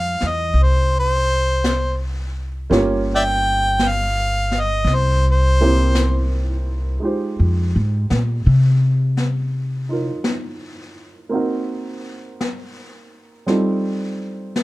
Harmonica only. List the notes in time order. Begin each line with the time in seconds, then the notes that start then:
Already playing: F5
0.27 D#5
0.62 C5
0.99 C5
3.16 D5 E5 G5
3.88 F5
4.60 D#5
4.95 C5
5.32 C5